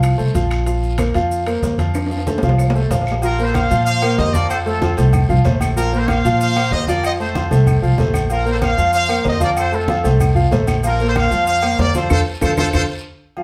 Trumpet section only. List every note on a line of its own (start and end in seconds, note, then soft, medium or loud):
3.24 3.43 F4 medium
3.24 3.43 A#4 medium
3.44 3.56 A4 medium
3.44 3.55 C5 medium
3.55 3.86 C5 medium
3.55 3.83 F5 medium
3.84 4.17 C5 medium
3.84 4.15 F5 loud
4.17 4.34 C5 medium
4.17 4.33 D#5 loud
4.33 4.51 A#4 medium
4.33 4.50 D5 medium
4.50 4.59 A4 medium
4.50 4.57 C5 medium
4.66 4.96 F4 medium
4.66 4.95 A4 medium
5.77 5.97 F4 medium
5.77 5.97 A#4 loud
5.98 6.09 A4 medium
5.98 6.08 C5 medium
6.08 6.40 C5 medium
6.08 6.39 F5 loud
6.40 6.70 C5 medium
6.40 6.70 F5 loud
6.72 6.88 C5 medium
6.72 6.87 D#5 loud
6.88 7.04 A#4 medium
6.88 7.03 D5 medium
7.05 7.13 C5 medium
7.05 7.12 D#5 medium
7.21 7.50 A4 medium
7.21 7.50 C5 medium
8.31 8.51 F4 medium
8.31 8.50 A#4 medium
8.51 8.57 A4 medium
8.51 8.56 C5 medium
8.62 8.92 C5 medium
8.62 8.92 F5 loud
8.94 9.24 C5 medium
8.94 9.23 F5 loud
9.27 9.42 C5 medium
9.27 9.42 D#5 loud
9.43 9.50 A#4 medium
9.43 9.50 D5 medium
9.59 9.73 A4 medium
9.59 9.73 C5 medium
9.75 10.05 F4 medium
9.75 10.05 A4 medium
10.86 11.04 F4 medium
10.86 11.05 A#4 loud
11.07 11.11 A4 medium
11.07 11.12 C5 medium
11.17 11.46 C5 medium
11.17 11.46 F5 loud
11.48 11.77 C5 medium
11.48 11.77 F5 loud
11.80 11.94 A#4 medium
11.80 11.94 D5 loud
11.96 12.10 A4 medium
11.96 12.10 C5 medium
12.12 12.19 F4 loud
12.12 12.19 A4 medium
12.12 12.19 C5 medium
12.44 12.51 F4 medium
12.44 12.51 A4 medium
12.44 12.51 C5 medium
12.58 12.66 F4 loud
12.58 12.66 A4 loud
12.58 12.66 C5 loud
12.75 12.82 F4 loud
12.75 12.82 A4 loud
12.75 12.82 C5 loud